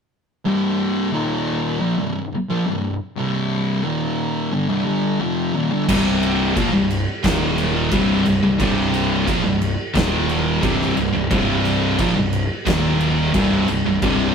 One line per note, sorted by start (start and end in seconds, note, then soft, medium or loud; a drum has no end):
0.45 1.13 C2 medium
0.45 1.13 G2 medium
0.45 1.13 C3 medium
1.13 1.80 D#2 medium
1.13 1.80 A#2 medium
1.13 1.81 D#3 medium
1.81 1.97 A#2 medium
1.81 1.98 F3 loud
1.98 2.25 C2 medium
1.98 2.26 G2 medium
2.33 muted distorted electric guitar stroke medium
2.50 2.66 A#2 medium
2.50 2.66 F3 loud
2.66 2.94 C2 medium
2.66 2.94 G2 medium
3.16 3.83 C2 loud
3.16 3.84 G2 loud
3.16 3.84 C3 loud
3.83 4.51 D#2 medium
3.83 4.51 A#2 loud
3.83 4.52 D#3 loud
4.52 4.68 G2 medium
4.52 4.69 D3 loud
4.69 4.85 C2 medium
4.69 4.84 G2 medium
4.85 5.19 G2 medium
4.85 5.19 D3 medium
4.85 5.20 G3 loud
5.21 5.54 F2 medium
5.21 5.54 C3 medium
5.21 5.54 F3 loud
5.54 5.70 D#2 medium
5.54 5.71 A#2 medium
5.71 5.87 G2 medium
5.71 5.88 D3 loud
5.88 6.53 C1 loud
5.88 6.55 C2 loud
5.88 6.55 G2 loud
5.88 6.56 C3 loud
5.88 kick loud
5.88 crash loud
5.88 crash medium
6.23 crash medium
6.56 6.72 A#1 medium
6.56 6.72 A#2 loud
6.56 6.72 F3 medium
6.56 kick loud
6.56 crash medium
6.73 7.05 C1 medium
6.73 7.00 C2 medium
6.73 7.01 G2 medium
6.90 crash medium
7.24 7.88 D#1 loud
7.24 7.91 D#2 medium
7.24 7.91 A#2 loud
7.24 7.91 D#3 loud
7.24 kick loud
7.24 snare loud
7.24 crash medium
7.58 crash medium
7.91 8.23 C1 medium
7.91 8.24 C2 loud
7.91 8.25 G2 loud
7.91 8.25 C3 loud
7.91 kick loud
7.91 crash medium
8.25 8.42 C1 medium
8.25 8.41 C2 medium
8.25 8.42 G2 medium
8.25 crash medium
8.43 8.59 C1 medium
8.43 8.57 C2 medium
8.43 8.58 G2 medium
8.59 9.23 C1 loud
8.59 9.26 C2 medium
8.59 9.26 G2 loud
8.59 9.26 C3 loud
8.59 kick loud
8.59 crash medium
8.94 crash medium
9.26 9.43 A#1 loud
9.26 9.43 A#2 medium
9.26 9.43 F3 loud
9.26 kick loud
9.26 crash medium
9.43 9.76 C1 medium
9.43 9.71 C2 medium
9.43 9.71 G2 medium
9.62 crash medium
9.94 10.59 D#1 loud
9.94 10.61 D#2 loud
9.94 10.62 A#2 loud
9.94 10.62 D#3 loud
9.94 kick loud
9.94 snare loud
9.94 crash medium
10.29 crash medium
10.62 10.95 C1 loud
10.62 10.95 C2 loud
10.62 10.96 G2 loud
10.62 10.96 C3 loud
10.62 kick loud
10.62 crash medium
10.82 snare soft
10.96 11.12 C1 medium
10.96 11.12 C2 medium
10.96 11.13 G2 medium
10.96 crash medium
11.14 11.30 C1 medium
11.14 11.29 C2 medium
11.14 11.30 G2 medium
11.31 11.95 C1 loud
11.31 11.98 C2 loud
11.31 11.98 G2 loud
11.31 11.98 C3 loud
11.31 kick loud
11.31 crash medium
11.65 crash medium
11.99 12.15 A#1 loud
11.99 12.15 A#2 medium
11.99 12.15 F3 loud
11.99 kick loud
11.99 crash medium
12.16 12.47 C1 medium
12.16 12.43 C2 medium
12.16 12.43 G2 medium
12.33 crash medium
12.66 13.30 D#1 medium
12.66 13.33 D#2 loud
12.66 13.34 A#2 loud
12.66 13.34 D#3 loud
12.66 kick loud
12.66 snare loud
12.66 crash medium
13.00 crash medium
13.34 13.66 C1 medium
13.34 13.67 C2 loud
13.34 13.67 G2 loud
13.34 13.68 C3 loud
13.34 kick loud
13.34 crash medium
13.68 13.84 C1 medium
13.68 13.84 C2 medium
13.68 13.84 G2 medium
13.68 crash medium
13.85 14.01 C1 medium
13.85 14.01 C2 medium
13.85 14.02 G2 medium
14.02 14.35 C1 loud
14.02 14.35 C2 loud
14.02 14.35 G2 loud
14.02 14.35 C3 loud
14.02 kick loud
14.02 crash medium